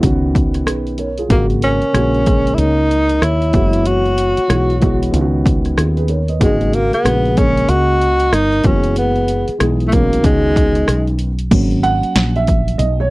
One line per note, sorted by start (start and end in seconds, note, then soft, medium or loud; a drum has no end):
0.01 0.66 C#2 medium
0.01 1.06 D#3 medium
0.01 1.06 B3 medium
0.01 1.07 C#4 medium
0.01 0.67 F#4 medium
0.01 kick medium
0.01 closed hi-hat medium
0.35 kick medium
0.35 closed hi-hat medium
0.54 cross-stick soft
0.54 closed hi-hat soft
0.67 1.27 B1 medium
0.67 0.97 G#4 soft
0.67 0.97 B4 medium
0.67 cross-stick loud
0.67 closed hi-hat medium
0.87 closed hi-hat soft
0.98 1.18 A#4 medium
0.98 1.17 C#5 medium
0.98 closed hi-hat medium
1.18 1.49 F4 medium
1.18 1.49 G#4 medium
1.18 closed hi-hat medium
1.28 1.80 G#1 loud
1.28 1.77 C#3 medium
1.28 1.77 G#3 medium
1.28 1.78 A#3 medium
1.28 1.45 A#3 medium
1.28 1.45 F#4 medium
1.28 1.78 F#4 medium
1.28 kick loud
1.28 closed hi-hat medium
1.50 closed hi-hat soft
1.62 2.56 C#4 medium
1.62 2.49 A#4 medium
1.62 closed hi-hat medium
1.82 muted fretless electric bass stroke soft
1.82 closed hi-hat soft
1.93 2.55 A#1 medium
1.93 2.18 C#3 medium
1.93 2.18 G#3 medium
1.93 2.19 A#3 medium
1.93 2.20 F#4 medium
1.93 cross-stick loud
1.93 closed hi-hat medium
2.15 closed hi-hat soft
2.25 3.16 C#3 medium
2.25 3.16 G#3 medium
2.25 3.17 A#3 medium
2.25 3.17 C#4 medium
2.25 kick medium
2.25 closed hi-hat medium
2.47 closed hi-hat medium
2.53 2.61 E4 medium
2.53 2.58 C#5 medium
2.58 3.19 C#2 medium
2.58 3.24 D#4 loud
2.58 3.22 A#4 medium
2.58 closed hi-hat loud
2.91 closed hi-hat medium
3.09 closed hi-hat soft
3.21 3.52 D#2 medium
3.21 3.88 E4 medium
3.21 3.84 C#5 medium
3.21 cross-stick loud
3.21 closed hi-hat medium
3.42 closed hi-hat soft
3.52 4.34 F#1 loud
3.52 4.33 E3 medium
3.52 4.33 G#3 medium
3.52 4.34 B3 medium
3.52 4.35 F#4 medium
3.52 kick loud
3.52 closed hi-hat medium
3.73 closed hi-hat medium
3.86 5.14 F#4 medium
3.86 5.13 C#5 medium
3.86 closed hi-hat medium
4.06 closed hi-hat soft
4.18 closed hi-hat medium
4.37 muted fretless electric bass stroke soft
4.37 closed hi-hat soft
4.48 5.10 B1 medium
4.48 4.73 E3 medium
4.48 4.74 G#3 medium
4.48 4.74 B3 medium
4.48 4.75 F#4 medium
4.48 cross-stick loud
4.48 closed hi-hat medium
4.70 closed hi-hat soft
4.80 5.12 E3 medium
4.80 5.13 G#3 medium
4.80 5.11 B3 medium
4.80 5.14 F#4 loud
4.80 kick medium
4.80 closed hi-hat medium
5.03 closed hi-hat medium
5.11 5.74 C#2 loud
5.11 6.16 D#3 medium
5.11 6.17 B3 medium
5.11 6.17 C#4 medium
5.11 5.22 F4 medium
5.11 closed hi-hat medium
5.21 5.81 F#4 medium
5.46 kick medium
5.46 closed hi-hat medium
5.65 cross-stick soft
5.65 closed hi-hat soft
5.77 6.42 D#2 medium
5.77 5.96 F4 soft
5.77 5.96 G#4 medium
5.77 cross-stick loud
5.77 closed hi-hat medium
5.97 6.09 G#4 medium
5.97 6.08 B4 medium
5.97 closed hi-hat soft
6.08 6.28 A#4 medium
6.08 6.28 C#5 medium
6.08 closed hi-hat medium
6.28 6.60 B4 medium
6.28 6.59 D#5 medium
6.28 closed hi-hat medium
6.39 6.90 G#1 medium
6.39 6.87 C#3 medium
6.39 6.88 G#3 medium
6.39 6.76 G#3 medium
6.39 6.88 A#3 medium
6.39 6.71 D#4 medium
6.39 6.89 F#4 medium
6.39 kick loud
6.39 closed hi-hat medium
6.61 closed hi-hat soft
6.73 6.94 A#3 medium
6.73 6.93 F#4 medium
6.73 closed hi-hat medium
6.93 7.39 B3 medium
6.93 7.34 G#4 medium
6.93 muted fretless electric bass stroke soft
6.93 closed hi-hat soft
7.04 7.66 A#1 medium
7.04 7.29 C#3 medium
7.04 7.29 G#3 medium
7.04 7.30 A#3 medium
7.04 7.30 F#4 medium
7.04 cross-stick loud
7.04 closed hi-hat medium
7.25 closed hi-hat soft
7.35 8.26 C#3 medium
7.35 8.27 G#3 medium
7.35 8.27 A#3 medium
7.35 7.71 C#4 medium
7.35 8.28 G#4 medium
7.35 7.69 A#4 medium
7.35 kick medium
7.35 closed hi-hat medium
7.57 closed hi-hat medium
7.69 8.29 C#2 medium
7.69 8.35 F#4 loud
7.69 8.32 D#5 medium
7.69 closed hi-hat medium
8.02 closed hi-hat medium
8.20 closed hi-hat soft
8.32 8.63 G1 medium
8.32 8.68 D#4 medium
8.32 8.65 A#4 medium
8.32 cross-stick loud
8.32 closed hi-hat medium
8.52 closed hi-hat soft
8.62 9.44 F#1 loud
8.62 9.43 E3 medium
8.62 9.44 G#3 medium
8.62 9.44 B3 medium
8.62 8.97 C#4 medium
8.62 9.45 F#4 medium
8.62 8.96 G#4 medium
8.62 kick loud
8.62 closed hi-hat medium
8.84 closed hi-hat medium
8.96 9.57 B3 medium
8.96 9.56 G#4 medium
8.96 closed hi-hat medium
9.16 closed hi-hat soft
9.28 closed hi-hat medium
9.48 muted fretless electric bass stroke soft
9.48 closed hi-hat soft
9.58 10.21 B1 medium
9.58 9.84 E3 medium
9.58 9.84 G#3 medium
9.58 9.85 B3 medium
9.58 9.86 G#4 medium
9.58 cross-stick loud
9.58 closed hi-hat medium
9.80 closed hi-hat soft
9.86 9.95 A3 medium
9.86 9.91 E4 medium
9.90 10.24 B2 medium
9.90 10.23 E3 medium
9.90 10.24 G#3 medium
9.90 10.25 A#3 loud
9.90 10.23 C#4 medium
9.90 10.24 F#4 medium
9.90 kick medium
9.90 closed hi-hat medium
10.13 closed hi-hat medium
10.22 10.85 C#2 medium
10.22 11.27 D#3 medium
10.22 11.17 G#3 loud
10.22 11.27 B3 medium
10.22 11.28 C#4 medium
10.22 11.16 D#4 medium
10.22 11.28 F#4 medium
10.22 kick medium
10.22 closed hi-hat medium
10.56 kick medium
10.56 closed hi-hat medium
10.75 cross-stick soft
10.75 closed hi-hat soft
10.88 11.49 B1 medium
10.88 cross-stick loud
10.88 closed hi-hat medium
11.07 closed hi-hat soft
11.19 closed hi-hat medium
11.39 closed hi-hat medium
11.51 12.01 G#1 loud
11.51 13.10 F#3 medium
11.51 13.10 A#3 soft
11.51 13.10 C#4 medium
11.51 kick loud
11.51 closed hi-hat medium
11.51 crash medium
11.71 closed hi-hat soft
11.83 12.38 F#5 loud
11.83 closed hi-hat medium
12.03 muted fretless electric bass stroke soft
12.03 closed hi-hat soft
12.16 12.76 A#1 medium
12.16 snare loud
12.16 closed hi-hat medium
12.36 12.80 E5 loud
12.36 closed hi-hat soft
12.47 kick medium
12.47 closed hi-hat medium
12.68 closed hi-hat medium
12.78 13.10 B1 medium
12.78 13.01 D#5 medium
12.78 closed hi-hat loud
13.00 13.10 C#5 medium